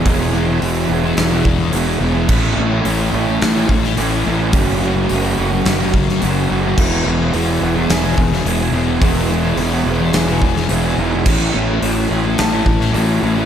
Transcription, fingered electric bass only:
X:1
M:4/4
L:1/8
Q:1/4=107
K:E
V:1 name="Fingered electric bass" clef=bass
E,,,2 E,,, E,,, E,,,2 E,,, E,,, | A,,, A,,, A,,, A,,, A,,, A,,, A,,, A,,, | F,,,2 F,,, F,,, F,,,2 F,,, F,,, | z E,,, E,,, E,,, E,,, E,,, E,,, E,,, |
E,,,2 E,,, E,,, E,,,2 E,,, E,,, | A,,, A,,, A,,, A,,, A,,, A,,, A,,, A,,, |]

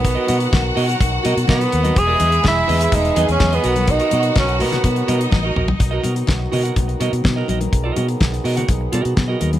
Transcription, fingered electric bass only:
X:1
M:4/4
L:1/16
Q:1/4=125
K:B
V:1 name="Fingered electric bass" clef=bass
B,,,2 B,,2 B,,,2 B,,2 B,,,2 B,, B,, B,,2 D,,2 | E,,,2 E,,2 E,,,2 E,,2 E,,,2 E,, E,, E,,2 B,,,2- | B,,,2 B,,2 B,,,2 B,,2 B,,2 B,,2 =A,,,2 ^A,,,2 | B,,,2 B,,2 B,,,2 B,,2 B,,,2 B,, B,, B,,2 A,,,2 |
B,,,2 B,,2 B,,,2 B,,2 B,,,2 B,, B,, B,,2 D,,2 |]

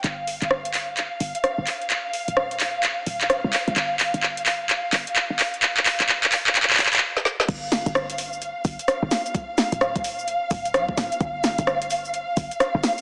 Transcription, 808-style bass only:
X:1
M:4/4
L:1/16
Q:"Swing 16ths" 1/4=129
K:Fmix
V:1 name="808-style bass" clef=bass
G,,,3 G,,,6 z G,,, z2 G,,, z2 | z3 D,,,6 z D,,,3 C,, z C,, | G,,,3 G,,,6 z G,,, z2 G,,, z2 | z3 D,,,6 z D,,,2 z4 |
G,,,3 G,,,6 z G,,, z2 G,,, z2 | z3 D,,,6 z D,,,2 C,, D,,, D,,, z | G,,,3 G,,,6 z G,,, z2 G,,, z2 |]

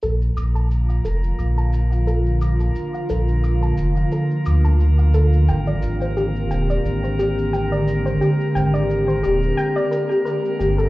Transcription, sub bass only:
X:1
M:4/4
L:1/8
Q:"Swing 16ths" 1/4=88
K:Bb
V:1 name="Sub bass" clef=bass
B,,, B,,,2 F,,, B,,,4 | z B,,,2 F,,, z D,,3 | _A,,, A,,,2 E,,, A,,,4 | z _A,,,2 E,,, z3 G,,, |]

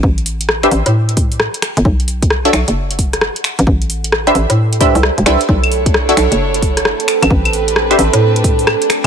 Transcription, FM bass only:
X:1
M:4/4
L:1/16
Q:"Swing 16ths" 1/4=132
K:Ador
V:1 name="FM bass" clef=bass
A,,,6 A,,, A,,6 z2 G,,, | B,,,6 B,,, F,,,6 z2 A,,, | A,,,6 A,,, A,,4 C,, z E,,, C,, z | B,,,6 B,,, F,,,6 z2 A,,, |
A,,,6 A,,, A,,6 z3 |]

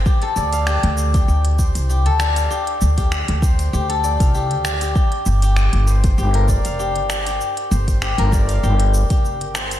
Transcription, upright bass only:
X:1
M:4/4
L:1/16
Q:"Swing 16ths" 1/4=98
K:Gm
V:1 name="Upright bass" clef=bass
z2 D,,3 D,,3 D,,3 C,,2 D,,3 | z2 D,,3 D,,3 D,,3 C,,2 D,,3 | z2 G,,,3 G,,,3 G,,,3 F,,,2 G,,,3 | z2 G,,,3 G,,,3 G,,,3 F,,,2 G,,,3 |]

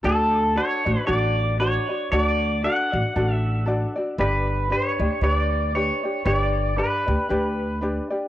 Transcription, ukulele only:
X:1
M:4/4
L:1/8
Q:"Swing" 1/4=116
K:D
V:1 name="Ukulele"
[DFAd]2 [DFAd] [DFd] [DFAd]2 [DFAd] [DFd] | [DFAd]2 [DFAd] [DFd] [DFAd]2 [DFAd] [DFd] | [DGBd]2 [DGBd] [DGd] [DGBd]2 [DGBd] [DGd] | [DGBd]2 [DGBd] [DGd] [DGBd]2 [DGBd] [DGd] |]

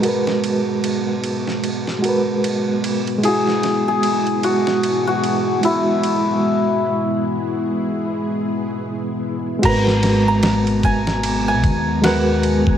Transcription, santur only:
X:1
M:4/4
L:1/16
Q:"Swing 16ths" 1/4=75
K:G#m
V:1 name="Santur"
z16 | G3 G3 F3 F3 E3 z | z16 | a3 a3 g3 g3 f3 z |]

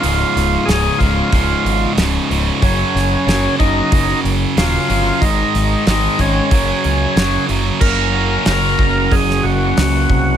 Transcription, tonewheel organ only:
X:1
M:4/4
L:1/8
Q:1/4=92
K:Gblyd
V:1 name="Tonewheel organ"
F2 A F3 z2 | D3 E2 z F2 | E2 E D4 z | B4 A G3 |]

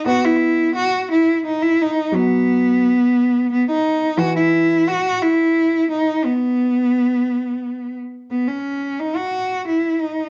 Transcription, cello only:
X:1
M:3/4
L:1/16
Q:1/4=87
K:B
V:1 name="Cello"
F E3 F2 E2 D E D2 | B,8 B, D3 | F E3 F2 E4 D2 | B,8- B,2 z2 |
B, C3 D F3 E2 D2 |]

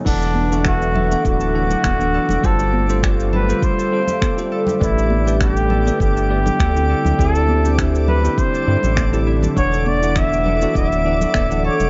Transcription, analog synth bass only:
X:1
M:4/4
L:1/16
Q:"Swing 16ths" 1/4=101
K:Dlyd
V:1 name="Analog synth bass" clef=bass
E,,,6- E,,, z D,,,3 z D,,,2 z E,,, | =G,,,6- G,,, z8 z | A,,,6- A,,, z =G,,,3 z D,,2 z D,, | D,,6- D,, z3 =G,, A,,,4 z |
E,,,6- E,,, z D,,,3 z D,,,2 z E,,, |]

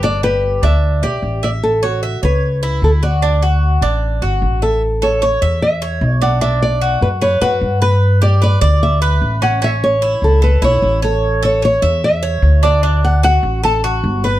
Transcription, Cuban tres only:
X:1
M:4/4
L:1/8
Q:1/4=150
K:Amix
V:1 name="Cuban tres"
D G2 D2 G2 e- | e c e c2 E2 F | D F2 D2 F2 e | z A c e2 c2 D |
D2 F2 B F2 B- | B G B d2 B2 C | C2 E2 A E2 c- | c A c e2 c2 D |
D2 F2 A F2 B |]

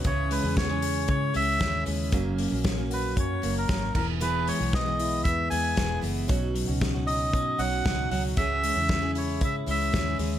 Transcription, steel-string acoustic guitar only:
X:1
M:4/4
L:1/16
Q:1/4=115
K:C#dor
V:1 name="Steel-string acoustic guitar"
[C,E,CEG]3 [CEG]2 [CEG]4- [CEG] [E,CEG]2 [E,CEG]2 [E,CEG]2 | [F,,C,F,A,CA]3 [F,A,CA]2 [F,A,CA]4- [F,A,CA] [F,A,CA]2 [F,A,CA]2 [E,B,EG]2 | [E,B,EG]3 [B,EG]2 [B,EG]4- [B,EG] [E,B,EG]2 [E,B,EG]2 [E,B,EG]2 | [B,,F,CDF]3 [CDF]2 [CDF]4- [CDF] [F,CDF]2 [F,CDF]2 [F,CDF]2 |
[C,E,CEG]3 [CEG]2 [CEG]4- [CEG] [E,CEG]2 [E,CEG]2 [E,CEG]2 |]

